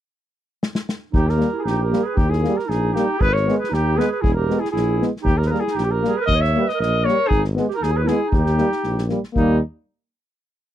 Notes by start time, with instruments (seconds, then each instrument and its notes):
0.63 snare
0.75 snare
0.89 snare
1.13 tuba D#2, clarinet D#4, trumpet G4, kick
1.27 clarinet G4, trumpet A#4, snare
1.37 trombone G3, euphonium A#3, snare
1.53 clarinet E4 G4
1.59 clarinet E4, trumpet G#4 A#4
1.64 tuba A#1, clarinet D#4, trumpet G4 G#4, snare
1.78 clarinet G4, trumpet A#4
1.91 trombone G3, euphonium A#3, snare
2.03 clarinet G#4, trumpet B4
2.14 tuba D#2, clarinet D#4, trumpet G4, kick
2.28 clarinet E4, trumpet G#4
2.33 snare
2.43 euphonium A#3, snare
2.47 trombone G3
2.54 clarinet G4, trumpet A#4
2.59 snare
2.66 tuba A#1, clarinet D#4, trumpet G#4
2.71 snare
2.93 euphonium A#3, clarinet D#4, trumpet G4, snare
2.98 trombone G3
3.18 tuba G#1, clarinet G#4, trumpet B4, kick
3.31 clarinet A#4, trumpet C#5
3.36 snare
3.47 trombone G#3, euphonium B3, snare
3.58 clarinet G#4, trumpet B4
3.64 snare
3.70 tuba D#2, clarinet D#4
3.74 trumpet G4, snare
3.96 trombone G#3, euphonium B3, clarinet G#4, trumpet B4
4.00 snare
4.08 clarinet G#4, trumpet B4
4.21 tuba E1, clarinet E4, trumpet G#4, kick
4.34 clarinet G4, trumpet A#4
4.49 trombone G#3, euphonium B3, snare
4.60 clarinet E4, trumpet G#4
4.65 snare
4.71 tuba A#1, clarinet E4, trumpet G#4
4.76 snare
5.00 trombone G#3, euphonium B3, snare
5.16 snare
5.21 tuba D#2, clarinet D#4, trumpet G4
5.26 kick
5.36 clarinet G4, trumpet A#4
5.42 clarinet G#4, snare
5.46 trumpet A#4 B4
5.51 trombone G3, euphonium A#3
5.55 snare
5.60 clarinet E4, trumpet G#4
5.67 clarinet D#4, snare
5.76 tuba A#1, trumpet G4, snare
5.85 clarinet G4
5.91 trumpet A#4
6.01 trombone G3, euphonium A#3, snare
6.09 clarinet G#4
6.17 trumpet B4
6.21 clarinet A#4
6.26 tuba D#2, trumpet D#5, kick
6.36 clarinet C#5
6.41 trumpet E5, snare
6.54 trombone G3, euphonium A#3, snare
6.62 clarinet B4
6.68 trumpet D#5, snare
6.74 clarinet A#4
6.80 tuba A#1, trumpet D#5, snare
7.00 clarinet A#4
7.04 euphonium A#3, trumpet C#5
7.08 trombone G3, snare
7.27 tuba G#1, clarinet D#4, trumpet G#4, kick
7.44 snare
7.56 trombone G#3, euphonium B3, snare
7.68 clarinet G4, snare
7.75 clarinet D#4, trumpet A#4
7.82 tuba D#2, trumpet G#4, snare
7.92 clarinet G#4
7.97 trumpet B4
8.04 euphonium B3, clarinet E4, snare
8.08 trombone G#3, trumpet G#4
8.23 clarinet E4
8.28 clarinet D#4, trumpet G#4
8.32 tuba D#2, trumpet G4, kick
8.46 snare
8.56 trombone G3, euphonium A#3, snare
8.72 snare
8.83 tuba A#1, snare
8.98 snare
9.08 trombone G3, euphonium A#3, snare
9.24 snare
9.33 tuba D#2, trombone G3, euphonium A#3, clarinet A#3, trumpet D#4, kick